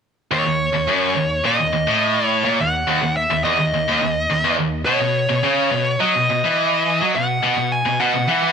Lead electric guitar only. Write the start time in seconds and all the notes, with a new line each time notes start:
0.33 C#5
1.46 D#5
2.27 C#5
2.61 F#5
3.17 E5
3.44 D#5
4.85 C#5
6.00 D#5
7.16 F#5
7.72 G#5
8.00 F#5